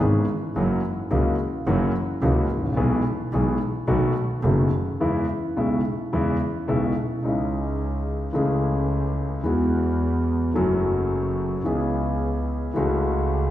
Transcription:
0.00 grand piano G#1 G#2 E3 B3 C#4 G#4, double bass G#1
0.56 double bass F#1, grand piano F#2 E3 F#3 A#3 C#4 F#4
1.11 grand piano C#2 C#3 E3 A#3 C#4 F#4, double bass C#2
1.67 double bass F#1, grand piano F#2 E3 F#3 A#3 C#4 F#4
2.22 double bass C#2, grand piano C#2 C#3 E3 A#3 C#4 F#4
2.50 double bass A1
2.57 grand piano G#1
2.63 grand piano A1
2.72 grand piano A#1
2.77 grand piano B1 B2 E3 G#3 B3 G#4, double bass B1
3.33 double bass B1, grand piano B1 B2 E3 G#3 B3 G#4
3.87 grand piano B1 B2 D#3 A3 B3 F#4, double bass B1
4.43 double bass F#1, grand piano F#1 F#2 D#3 A3 B3 F#4
5.00 grand piano E2 C#3 E3 G#3 B3 E4
5.57 grand piano B1 B2 C#3 G#3 B3 E4
6.13 grand piano E2 C#3 E3 G#3 B3 E4
6.68 grand piano B1 B2 C#3 G#3 B3 E4
7.23 double bass C#2, grand piano C#2 C#3 G#3 C#4 D#4
7.27 grand piano E4
8.33 grand piano C#2 C#3 E3 A3 C#4, double bass C#2
8.37 grand piano G#4
9.43 double bass E2, grand piano E2 E3 G#3 B3 F#4
10.54 double bass F#1, grand piano F#2 E3 F#3 A3 C#4 F#4
11.64 grand piano C#2 C#3 E3 B3 C#4 G#4, double bass C#2
12.74 grand piano C#2 C#3 E3 A3 C#4 F#4, double bass C#2

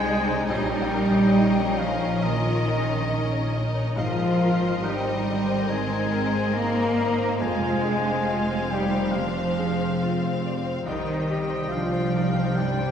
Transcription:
Already playing: double bass section C2, grand piano G2 D4 G4 C5 D5, cello section G#3, french horn section G#3, violin section C4 D5 G5, viola section D#4, flute G#5, oboe G#5
0.06 grand piano D5
0.28 grand piano C5
0.48 grand piano A#1, double bass section A#1, french horn section G3, cello section G3, violin section C#4 A#4 D#5, flute G5, oboe G5
0.65 flute G5 A#5
0.71 grand piano C#5
0.82 flute F5 G5
0.94 grand piano A#4
1.15 grand piano C#5
1.38 grand piano D#4
1.59 grand piano C#5
1.78 cello section F3, flute F5, oboe F5
1.82 french horn section F3, grand piano D#5
2.03 grand piano C#5
2.22 grand piano A#2, cello section D#3, french horn section D#3, viola section F4, flute D#5, oboe D#5
2.46 grand piano C#5
2.68 viola section D#4, grand piano A#4
2.89 grand piano C#5
3.10 viola section C#4, grand piano D#4
3.32 grand piano C#5
3.53 viola section D#4, grand piano D#5
3.75 grand piano C#5
3.96 double bass section G#1, grand piano G#2, french horn section F3, cello section F3, violin section C4 A#4 D#5, viola section F4, flute F5, oboe F5
4.18 grand piano C5
4.41 grand piano A#4
4.61 grand piano C5
4.83 cello section G3, french horn section G3, grand piano D#4, viola section D#4, flute G5, oboe G5
5.04 grand piano C5
5.26 viola section D3, grand piano D5
5.47 grand piano C5
5.68 grand piano D#3, cello section G#3, french horn section G#3, viola section C4, oboe G#5, flute A#5
5.72 flute G#5
5.90 grand piano C5
6.11 viola section C4, grand piano A#4
6.32 grand piano C5
6.54 french horn section A#3, cello section A#3, grand piano D#4, viola section D#4, flute A#5, oboe A#5
6.72 flute C6
6.76 grand piano C5, flute A#5
6.89 flute G#5
6.93 grand piano D5, flute A#5
6.98 viola section D#4
7.17 grand piano C5
7.40 double bass section F1, grand piano F2, cello section G#3, french horn section G#3, violin section C4 C5 F5, viola section F4, oboe G#5, flute G#5
7.61 grand piano C5
7.84 viola section D4, grand piano G#4
8.05 grand piano C5
8.28 viola section C4, grand piano F4
8.51 grand piano C5
8.71 cello section G3, french horn section G3, viola section D#4, grand piano D5, oboe G5, flute G5
8.94 grand piano C5
9.12 grand piano C3, cello section F3, french horn section F3, viola section D4, oboe F5, flute F5
9.38 grand piano C5
9.59 grand piano G#4
9.81 grand piano C5
10.00 viola section C4, grand piano F4
10.24 grand piano C5
10.46 grand piano D5
10.66 grand piano C5
10.84 double bass section C2, grand piano C2, french horn section D#3, cello section D#3, violin section C4 D5 G5, viola section D#4, oboe D#5, flute F5
10.89 flute D#5
11.08 grand piano C5
11.28 viola section G4, grand piano G4
11.49 grand piano C5
11.69 french horn section F3, cello section F3, grand piano D4, viola section F4, flute F5, oboe F5
11.92 grand piano C5
12.14 viola section D#4, grand piano D5
12.36 grand piano C5
12.55 grand piano G2, cello section G3, french horn section G3, viola section D4, oboe G5, flute G5
12.78 grand piano C5

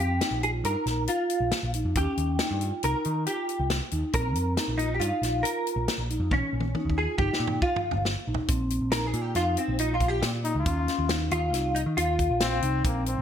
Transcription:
Already playing: vibraphone C4
0.00 picked electric bass F2, hollow-body jazz guitar G4
0.21 vibraphone D#4, snare, closed hi-hat
0.31 picked electric bass A#1
0.43 vibraphone F4, hollow-body jazz guitar G#4, closed hi-hat
0.64 picked electric bass G2, vibraphone D#4, hollow-body jazz guitar A#4, closed hi-hat
0.86 picked electric bass A#1, snare, closed hi-hat
1.08 vibraphone F4, hollow-body jazz guitar F4, closed hi-hat
1.30 closed hi-hat
1.40 picked electric bass A#1
1.52 snare, closed hi-hat
1.63 picked electric bass A#1
1.74 vibraphone D#4, closed hi-hat
1.85 picked electric bass F2
1.95 picked electric bass D#2, vibraphone C#4, hollow-body jazz guitar G4, kick, closed hi-hat
2.18 picked electric bass D#2, closed hi-hat
2.39 vibraphone D#4, snare, closed hi-hat
2.51 picked electric bass G2
2.61 vibraphone F4, closed hi-hat
2.83 picked electric bass C2, vibraphone D#4, hollow-body jazz guitar A#4, closed hi-hat
3.05 picked electric bass D#3, closed hi-hat
3.27 vibraphone F4, hollow-body jazz guitar G4, closed hi-hat
3.49 closed hi-hat
3.59 picked electric bass C2
3.70 snare, closed hi-hat
3.91 picked electric bass D#2, vibraphone D#4, closed hi-hat
4.13 picked electric bass A#1, vibraphone C4, hollow-body jazz guitar A#4, kick, closed hi-hat
4.36 picked electric bass F2, closed hi-hat
4.57 vibraphone D#4, snare, closed hi-hat
4.68 picked electric bass A#1
4.78 hollow-body jazz guitar D#4, vibraphone F4, closed hi-hat
4.94 hollow-body jazz guitar G4
5.00 picked electric bass G2, vibraphone D#4, hollow-body jazz guitar F4, closed hi-hat
5.22 picked electric bass A#1, snare, closed hi-hat
5.43 vibraphone F4, hollow-body jazz guitar A#4, closed hi-hat
5.67 closed hi-hat
5.76 picked electric bass A#1
5.88 snare, closed hi-hat
5.98 picked electric bass A#1
6.10 vibraphone D#4, closed hi-hat
6.20 picked electric bass F2
6.31 picked electric bass A#1, vibraphone C#4, hollow-body jazz guitar C#4, kick, high tom
6.53 picked electric bass A#1
6.60 high tom
6.75 vibraphone D#4, high tom
6.85 picked electric bass D#2
6.90 kick
6.97 vibraphone F4, hollow-body jazz guitar G#4
7.18 picked electric bass G1, vibraphone D#4, hollow-body jazz guitar G4, kick, mid tom
7.33 snare
7.40 picked electric bass A#2
7.47 mid tom
7.62 hollow-body jazz guitar F4, vibraphone F4, kick
7.76 mid tom
7.91 picked electric bass G1, floor tom
8.05 snare
8.27 picked electric bass A#1, vibraphone D#4
8.34 floor tom
8.48 picked electric bass A#1, vibraphone C4, kick, closed hi-hat
8.70 closed hi-hat
8.81 picked electric bass A#1
8.92 vibraphone D#4, hollow-body jazz guitar A#4, snare, closed hi-hat
9.07 hollow-body jazz guitar G#4
9.13 picked electric bass A#2, vibraphone F4, closed hi-hat
9.21 hollow-body jazz guitar G4
9.35 picked electric bass F2, vibraphone D#4, hollow-body jazz guitar F4, snare, closed hi-hat
9.57 hollow-body jazz guitar C4, closed hi-hat
9.68 picked electric bass A#1
9.79 hollow-body jazz guitar D#4, vibraphone F4, closed hi-hat
9.94 hollow-body jazz guitar F4
10.00 picked electric bass A#1, kick, closed hi-hat
10.08 hollow-body jazz guitar G4
10.22 picked electric bass A#2, snare, closed hi-hat
10.44 trombone D#4, vibraphone D#4, closed hi-hat
10.55 picked electric bass C#2
10.59 trombone F4
10.66 picked electric bass D#2, vibraphone C#4, kick, closed hi-hat
10.88 snare, closed hi-hat
10.99 picked electric bass D#2
11.09 vibraphone D#4, snare, closed hi-hat
11.31 picked electric bass D#2, vibraphone F4, hollow-body jazz guitar F4, closed hi-hat
11.52 picked electric bass C2, vibraphone D#4, snare, closed hi-hat
11.75 hollow-body jazz guitar D#4, closed hi-hat
11.86 picked electric bass D#3
11.97 picked electric bass D#2, hollow-body jazz guitar F4, vibraphone F4, closed hi-hat
12.19 kick, closed hi-hat
12.30 picked electric bass A#1
12.41 trombone C4, snare, closed hi-hat
12.62 picked electric bass C2, vibraphone D#4, closed hi-hat
12.84 picked electric bass A#1, trombone A#3, vibraphone C4, kick, closed hi-hat
13.06 trombone C4, closed hi-hat
13.18 picked electric bass A#1

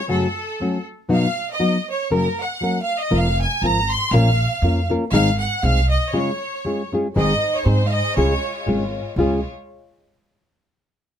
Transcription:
0.08 nylon-string guitar F#2 C#3 F#3 A3 C#4 F#4, violin section A4
0.60 nylon-string guitar F#3 A3 C#4 F#4
1.09 nylon-string guitar B2 F#3 B3 D#4 F#4, violin section F5
1.51 violin section D#5
1.60 nylon-string guitar F#3 B3 D#4 F#4
1.90 violin section C#5
2.10 nylon-string guitar F#2 C#3 F#3 A#3 C#4 A#4, violin section A#4
2.41 violin section F#5
2.61 nylon-string guitar F#3 A#3 C#4 A#4
2.82 violin section F5
2.99 violin section D#5
3.11 upright bass F1, nylon-string guitar F3 C4 F4 A#4
3.16 violin section F5
3.41 violin section G#5
3.62 upright bass G#1, nylon-string guitar F3 C4 F4 A#4, violin section A#5
3.90 violin section C6
4.11 upright bass A#1, nylon-string guitar A#2 F3 A#3 C#4 F4 A#4, violin section F5
4.62 upright bass F2, nylon-string guitar A#3 C#4 F4 A#4
4.90 nylon-string guitar A#3 C#4 F4 A#4
5.12 upright bass G#1, nylon-string guitar G#2 D#3 G#3 C4 D#4 G#4, violin section F5
5.39 violin section F#5
5.63 upright bass C2, nylon-string guitar G#3 C4 D#4 G#4, violin section F5
5.90 violin section D#5
6.13 nylon-string guitar C#3 G#3 C#4 F4 G#4, violin section C#5
6.65 nylon-string guitar G#3 C#4 F4 G#4
6.92 nylon-string guitar G#3 C#4 F4 G#4
7.16 upright bass G#1, nylon-string guitar G#2 D#3 G#3 C4 D#4 G#4, violin section G#3 D#4 C5 D#5
7.56 violin section C#5
7.65 upright bass G#2, nylon-string guitar G#3 C4 D#4 G#4, violin section C5
7.86 violin section F5
7.92 violin section D#5
8.16 upright bass C#2, nylon-string guitar C#3 G#3 C#4 F4 G#4, violin section F4 C#5
8.66 upright bass G#1, nylon-string guitar G#3 C#4 F4 G#4
9.16 upright bass C#2, nylon-string guitar C#3 G#3 C#4 F4 G#4, violin section G#3 F4 C#5

